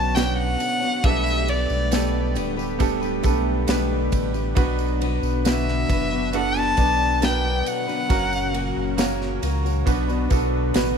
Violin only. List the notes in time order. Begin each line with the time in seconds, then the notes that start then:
Already playing: A5
0.15 G5
0.38 F#5
1.04 E5
1.49 D5
5.49 E5
6.37 F#5
6.58 A5
7.24 G5
7.68 F#5